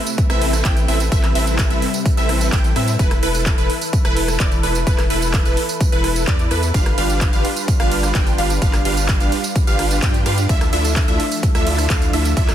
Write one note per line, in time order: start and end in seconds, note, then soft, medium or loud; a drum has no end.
0.00 2.96 C3 medium
0.00 1.10 A3 medium
0.00 2.96 B4 medium
0.06 closed hi-hat soft
0.06 tambourine medium
0.18 kick loud
0.18 closed hi-hat medium
0.18 tambourine medium
0.30 0.63 A1 loud
0.30 0.62 C4 loud
0.30 0.62 E4 medium
0.30 0.62 A4 medium
0.30 0.62 B4 medium
0.30 0.62 E5 loud
0.30 cross-stick medium
0.30 closed hi-hat soft
0.30 tambourine soft
0.42 open hi-hat loud
0.53 cross-stick medium
0.53 closed hi-hat soft
0.53 tambourine medium
0.65 0.86 A1 loud
0.65 0.79 C4 medium
0.65 0.79 E4 medium
0.65 0.79 A4 medium
0.65 0.79 B4 medium
0.65 0.79 G5 loud
0.65 kick loud
0.65 clap loud
0.65 closed hi-hat medium
0.65 tambourine medium
0.77 closed hi-hat soft
0.77 tambourine soft
0.88 1.09 A1 loud
0.88 1.02 C4 medium
0.88 1.02 E4 medium
0.88 1.02 A4 medium
0.88 1.02 B4 medium
0.88 1.02 E5 medium
0.88 open hi-hat medium
1.00 closed hi-hat soft
1.00 tambourine medium
1.12 1.33 A1 loud
1.12 2.98 G3 medium
1.12 1.26 C4 loud
1.12 1.26 E4 medium
1.12 1.26 A4 medium
1.12 1.26 B4 medium
1.12 1.26 E5 loud
1.12 kick loud
1.12 closed hi-hat medium
1.12 tambourine medium
1.23 cross-stick medium
1.23 clap soft
1.23 closed hi-hat soft
1.23 tambourine soft
1.35 1.68 A1 medium
1.35 1.68 C4 medium
1.35 1.68 E4 medium
1.35 1.68 A4 medium
1.35 1.68 B4 medium
1.35 1.68 E5 loud
1.35 open hi-hat loud
1.47 closed hi-hat soft
1.47 tambourine medium
1.59 kick loud
1.59 clap loud
1.59 closed hi-hat medium
1.59 tambourine medium
1.70 1.82 A1 loud
1.70 1.84 C4 medium
1.70 1.84 E4 medium
1.70 1.84 A4 medium
1.70 1.84 B4 medium
1.70 1.84 E5 medium
1.70 closed hi-hat soft
1.70 tambourine soft
1.82 open hi-hat loud
1.94 closed hi-hat soft
1.94 tambourine medium
2.06 kick loud
2.06 closed hi-hat medium
2.06 tambourine medium
2.17 2.50 A1 loud
2.17 2.50 C4 loud
2.17 2.50 E4 medium
2.17 2.50 A4 medium
2.17 2.50 B4 medium
2.17 2.50 E5 loud
2.17 closed hi-hat soft
2.17 tambourine soft
2.29 cross-stick medium
2.29 open hi-hat loud
2.41 closed hi-hat soft
2.41 tambourine medium
2.52 2.74 A1 loud
2.52 2.66 C4 medium
2.52 2.66 E4 medium
2.52 2.67 A4 medium
2.52 2.66 B4 medium
2.52 2.66 G5 loud
2.52 2.67 G5 loud
2.52 kick loud
2.52 clap loud
2.52 closed hi-hat medium
2.52 tambourine medium
2.64 closed hi-hat soft
2.64 tambourine soft
2.76 2.97 A2 loud
2.76 2.90 C4 medium
2.76 2.90 E4 medium
2.76 2.90 A4 medium
2.76 2.90 B4 medium
2.76 2.90 E5 medium
2.76 cross-stick medium
2.76 open hi-hat medium
2.88 closed hi-hat soft
2.88 tambourine medium
2.99 3.20 E1 loud
2.99 6.71 E3 medium
2.99 3.13 E4 loud
2.99 6.71 E4 medium
2.99 3.13 A4 medium
2.99 6.71 A4 medium
2.99 3.13 B4 loud
2.99 10.45 B4 medium
2.99 3.13 B4 loud
2.99 kick loud
2.99 closed hi-hat medium
2.99 tambourine medium
3.11 cross-stick medium
3.11 closed hi-hat soft
3.11 tambourine soft
3.23 3.56 E1 loud
3.23 3.55 E4 medium
3.23 3.55 A4 medium
3.23 3.55 B4 loud
3.23 open hi-hat loud
3.34 closed hi-hat soft
3.34 tambourine medium
3.46 kick loud
3.46 clap loud
3.46 closed hi-hat medium
3.46 tambourine medium
3.58 3.70 E1 loud
3.58 3.72 E4 medium
3.58 3.72 A4 medium
3.58 3.72 B4 medium
3.58 closed hi-hat soft
3.58 tambourine soft
3.70 open hi-hat loud
3.81 closed hi-hat soft
3.81 tambourine medium
3.93 kick loud
3.93 closed hi-hat medium
3.93 tambourine medium
4.05 4.38 E1 medium
4.05 4.37 E4 loud
4.05 4.37 A4 medium
4.05 4.37 B4 loud
4.05 cross-stick medium
4.05 closed hi-hat soft
4.05 tambourine soft
4.17 open hi-hat loud
4.28 cross-stick medium
4.28 tambourine medium
4.40 4.61 E1 loud
4.40 4.54 E4 medium
4.40 4.54 A4 medium
4.40 4.54 D5 loud
4.40 kick loud
4.40 clap loud
4.40 closed hi-hat medium
4.40 tambourine medium
4.52 closed hi-hat soft
4.52 tambourine soft
4.63 4.84 E1 loud
4.63 4.77 E4 medium
4.63 4.77 A4 medium
4.63 4.77 B4 medium
4.63 open hi-hat medium
4.75 closed hi-hat soft
4.75 tambourine medium
4.87 5.08 E1 loud
4.87 5.01 E4 loud
4.87 5.01 A4 medium
4.87 5.01 B4 loud
4.87 kick loud
4.87 closed hi-hat medium
4.87 tambourine medium
4.98 cross-stick medium
4.98 clap soft
4.98 closed hi-hat soft
4.98 tambourine soft
5.10 5.43 E1 medium
5.10 5.43 E4 medium
5.10 5.43 A4 medium
5.10 5.43 B4 loud
5.10 5.43 B4 medium
5.10 open hi-hat loud
5.22 closed hi-hat soft
5.22 tambourine medium
5.34 kick loud
5.34 clap loud
5.34 closed hi-hat medium
5.34 tambourine medium
5.45 5.57 E1 loud
5.45 5.59 E4 medium
5.45 5.59 A4 medium
5.45 5.59 B4 medium
5.45 closed hi-hat soft
5.45 tambourine soft
5.57 open hi-hat loud
5.69 closed hi-hat soft
5.69 tambourine medium
5.81 kick loud
5.81 closed hi-hat medium
5.81 tambourine medium
5.92 6.25 E1 loud
5.92 6.25 E4 loud
5.92 6.25 A4 medium
5.92 6.25 B4 loud
5.92 closed hi-hat soft
5.92 tambourine soft
6.04 cross-stick medium
6.04 open hi-hat loud
6.16 closed hi-hat soft
6.16 tambourine medium
6.27 6.49 E2 loud
6.27 6.41 E4 medium
6.27 6.41 A4 medium
6.27 6.41 D5 loud
6.27 kick loud
6.27 clap loud
6.27 closed hi-hat medium
6.27 tambourine medium
6.39 closed hi-hat soft
6.39 tambourine soft
6.51 6.72 E2 loud
6.51 6.65 E4 medium
6.51 6.65 A4 medium
6.51 6.65 B4 loud
6.51 6.65 B4 medium
6.51 cross-stick medium
6.51 open hi-hat medium
6.63 closed hi-hat soft
6.63 tambourine medium
6.74 6.95 G1 loud
6.74 10.46 G3 medium
6.74 6.88 D4 loud
6.74 10.46 D4 medium
6.74 6.88 F4 medium
6.74 10.46 F4 medium
6.74 6.88 G4 medium
6.74 6.88 B4 medium
6.74 6.88 F5 loud
6.74 kick loud
6.74 closed hi-hat medium
6.74 ride medium
6.74 tambourine medium
6.86 cross-stick medium
6.86 closed hi-hat soft
6.86 tambourine soft
6.98 7.31 G1 loud
6.98 7.30 D4 medium
6.98 7.30 F4 medium
6.98 7.30 G4 medium
6.98 7.30 B4 medium
6.98 7.30 F5 loud
6.98 open hi-hat loud
6.98 ride medium
7.10 closed hi-hat soft
7.10 tambourine medium
7.21 kick loud
7.21 clap loud
7.21 closed hi-hat medium
7.21 ride medium
7.21 tambourine medium
7.33 7.45 G1 loud
7.33 7.47 D4 medium
7.33 7.47 F4 medium
7.33 7.47 G4 medium
7.33 7.47 B4 medium
7.33 7.47 F5 medium
7.33 closed hi-hat soft
7.33 tambourine soft
7.45 open hi-hat medium
7.45 ride medium
7.56 closed hi-hat soft
7.56 tambourine medium
7.68 kick loud
7.68 closed hi-hat medium
7.68 ride medium
7.68 tambourine medium
7.80 8.13 G1 loud
7.80 8.12 D4 loud
7.80 8.12 F4 medium
7.80 8.12 G4 medium
7.80 8.12 B4 medium
7.80 8.12 F5 loud
7.80 cross-stick medium
7.80 closed hi-hat soft
7.80 tambourine soft
7.92 open hi-hat loud
7.92 ride medium
8.03 cross-stick medium
8.03 closed hi-hat soft
8.03 tambourine medium
8.15 8.36 G1 loud
8.15 8.29 D4 medium
8.15 8.29 F4 medium
8.15 8.29 G4 medium
8.15 8.29 B4 medium
8.15 8.29 G5 loud
8.15 kick loud
8.15 clap loud
8.15 closed hi-hat medium
8.15 ride medium
8.15 tambourine medium
8.27 closed hi-hat soft
8.27 tambourine soft
8.38 8.59 G1 medium
8.38 8.52 D4 medium
8.38 8.52 F4 medium
8.38 8.52 G4 medium
8.38 8.52 B4 medium
8.38 8.52 F5 medium
8.38 open hi-hat medium
8.38 ride medium
8.50 closed hi-hat soft
8.50 tambourine medium
8.62 8.83 G1 loud
8.62 8.76 D4 loud
8.62 8.76 F4 medium
8.62 8.76 G4 medium
8.62 8.76 B4 medium
8.62 8.76 F5 loud
8.62 kick loud
8.62 closed hi-hat medium
8.62 ride medium
8.62 tambourine medium
8.73 cross-stick medium
8.73 clap soft
8.73 closed hi-hat soft
8.73 tambourine soft
8.85 9.18 G1 loud
8.85 9.18 D4 medium
8.85 9.18 F4 medium
8.85 9.18 G4 medium
8.85 9.18 B4 medium
8.85 9.18 F5 loud
8.85 open hi-hat loud
8.85 ride medium
8.97 closed hi-hat soft
8.97 tambourine medium
9.09 kick loud
9.09 clap loud
9.09 closed hi-hat medium
9.09 ride medium
9.09 tambourine medium
9.20 9.32 G1 loud
9.20 9.35 D4 medium
9.20 9.34 F4 medium
9.20 9.34 G4 medium
9.20 9.34 B4 medium
9.20 9.34 F5 medium
9.20 9.34 F5 loud
9.20 closed hi-hat soft
9.20 tambourine soft
9.32 open hi-hat medium
9.32 ride medium
9.44 closed hi-hat soft
9.44 tambourine medium
9.56 kick loud
9.56 closed hi-hat medium
9.56 ride medium
9.56 tambourine medium
9.67 10.00 G1 loud
9.67 10.00 D4 medium
9.67 10.00 F4 medium
9.67 10.00 G4 medium
9.67 10.00 B4 medium
9.67 10.00 F5 loud
9.67 closed hi-hat soft
9.67 tambourine soft
9.79 cross-stick medium
9.79 open hi-hat loud
9.79 ride medium
9.91 closed hi-hat soft
9.91 tambourine medium
10.02 10.24 G2 loud
10.02 10.16 D4 medium
10.02 10.16 F4 medium
10.02 10.16 G4 medium
10.02 10.16 B4 medium
10.02 10.16 G5 loud
10.02 10.17 G5 loud
10.02 kick loud
10.02 clap loud
10.02 closed hi-hat medium
10.02 ride medium
10.02 tambourine medium
10.14 closed hi-hat soft
10.14 tambourine soft
10.26 10.47 G2 loud
10.26 10.40 D4 medium
10.26 10.40 F4 medium
10.26 10.40 G4 medium
10.26 10.40 B4 medium
10.26 10.40 F5 loud
10.26 10.40 F5 medium
10.26 cross-stick medium
10.26 open hi-hat medium
10.26 ride medium
10.38 closed hi-hat soft
10.38 tambourine medium
10.49 10.70 D2 medium
10.49 12.55 D3 medium
10.49 12.55 F3 medium
10.49 12.55 A3 medium
10.49 10.63 D4 loud
10.49 10.63 E4 medium
10.49 10.63 F4 medium
10.49 10.63 A4 medium
10.49 10.63 E5 loud
10.49 12.35 E5 medium
10.49 kick loud
10.49 closed hi-hat medium
10.49 ride medium
10.49 tambourine medium
10.61 cross-stick medium
10.61 closed hi-hat soft
10.61 tambourine soft
10.73 11.06 D2 loud
10.73 11.05 D4 medium
10.73 11.05 E4 medium
10.73 11.05 F4 medium
10.73 11.05 A4 medium
10.73 11.05 E5 loud
10.73 open hi-hat loud
10.73 ride medium
10.85 closed hi-hat soft
10.85 tambourine medium
10.96 kick loud
10.96 clap loud
10.96 closed hi-hat medium
10.96 ride medium
10.96 tambourine medium
11.08 11.20 D2 loud
11.08 11.22 D4 medium
11.08 11.22 E4 medium
11.08 11.22 F4 medium
11.08 11.22 A4 medium
11.08 11.22 E5 loud
11.08 11.22 E5 medium
11.08 closed hi-hat soft
11.08 tambourine soft
11.20 open hi-hat medium
11.20 ride medium
11.31 closed hi-hat soft
11.31 tambourine medium
11.43 kick loud
11.43 closed hi-hat medium
11.43 ride medium
11.43 tambourine medium
11.55 11.88 D2 loud
11.55 11.87 D4 medium
11.55 11.87 E4 medium
11.55 11.87 F4 medium
11.55 11.87 A4 medium
11.55 11.87 E5 loud
11.55 cross-stick medium
11.55 closed hi-hat soft
11.55 tambourine soft
11.67 open hi-hat loud
11.67 ride medium
11.78 cross-stick medium
11.78 closed hi-hat soft
11.78 tambourine medium
11.90 12.11 D2 loud
11.90 12.04 D4 medium
11.90 12.04 E4 medium
11.90 12.04 F4 medium
11.90 12.04 A4 medium
11.90 12.04 F5 loud
11.90 kick loud
11.90 clap loud
11.90 closed hi-hat medium
11.90 ride medium
11.90 tambourine medium
12.02 closed hi-hat soft
12.02 tambourine soft
12.13 12.34 D2 medium
12.13 12.27 D4 medium
12.13 12.27 E4 medium
12.13 12.27 F4 medium
12.13 12.27 A4 medium
12.13 12.27 E5 medium
12.13 open hi-hat medium
12.13 ride medium
12.25 closed hi-hat soft
12.25 tambourine medium
12.37 12.55 D2 medium
12.37 12.51 D4 loud
12.37 12.55 D4 medium
12.37 12.51 E4 medium
12.37 12.51 F4 medium
12.37 12.51 A4 medium
12.37 12.51 E5 loud
12.37 kick loud
12.37 closed hi-hat medium
12.37 ride medium
12.37 tambourine medium
12.48 cross-stick medium
12.48 clap soft
12.48 closed hi-hat soft
12.48 tambourine soft